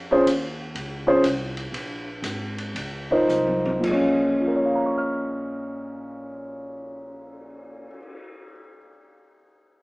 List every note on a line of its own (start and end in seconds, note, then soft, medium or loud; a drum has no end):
0.00 0.25 F2 medium
0.11 0.25 C#4 medium
0.11 0.25 F4 medium
0.11 0.26 G#4 medium
0.11 0.26 C5 medium
0.26 0.73 D#2 medium
0.26 hi-hat pedal medium
0.26 ride medium
0.75 1.22 C#2 medium
0.75 ride medium
1.07 1.22 C#4 medium
1.07 1.22 F4 medium
1.07 1.22 G#4 medium
1.07 1.22 C5 medium
1.23 1.71 C2 medium
1.23 hi-hat pedal soft
1.23 ride medium
1.57 ride soft
1.72 2.22 A#1 medium
1.72 ride medium
2.22 2.73 G#1 medium
2.22 hi-hat pedal medium
2.22 ride medium
2.58 ride soft
2.75 3.27 C#2 medium
2.75 ride medium
3.11 3.80 D#4 medium
3.11 3.81 F4 medium
3.11 3.81 A#4 medium
3.11 3.81 C5 medium
3.28 3.82 C2 medium
3.28 hi-hat pedal soft
3.28 high tom soft
3.47 high tom medium
3.65 high tom medium
3.79 7.86 A#2 medium
3.79 7.90 F3 medium
3.83 7.86 A#1 medium
3.83 kick medium
3.83 crash medium
3.88 7.95 G#3 medium
3.88 7.98 C#4 medium
4.21 cymbal swell soft
4.40 8.43 F4 soft
4.47 8.50 A#4 soft
4.56 8.59 C#5 soft
4.65 8.68 F5 soft
4.75 8.78 A#5 soft
4.86 8.89 C#6 soft
4.98 9.01 F6 soft